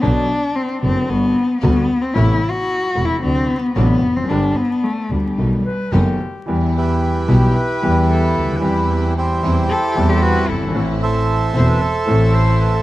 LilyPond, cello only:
\new Staff \with { instrumentName = "Cello" } { \time 4/4 \key g \major \tempo 4 = 112 d'4 c'8 c'8 b4 b8. c'16 | \tuplet 3/2 { e'4 fis'8~ fis'4 e'8 c'4 b8 } b8. c'16 | d'8 b8 a8 g4. r4 | \key e \minor r1 |
r2 a'8. g'16 fis'8 e'8~ | e'16 r2. r8. | }